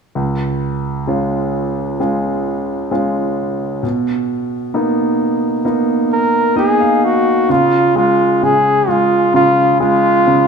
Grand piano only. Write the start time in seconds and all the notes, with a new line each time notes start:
0.15 C#2
1.07 G#3 C#4 F4
2.00 G#3 C#4 F4
2.91 G#3 C#4 F4
3.83 B2
4.74 A#3 B3 D#4
5.65 A#3 B3 D#4
6.56 A#3 B3 D#4 D#5
6.80 F5
7.49 C#3
7.96 G#3
8.43 C#3
8.88 G#3
9.34 C#3
9.80 G#3
10.27 C#3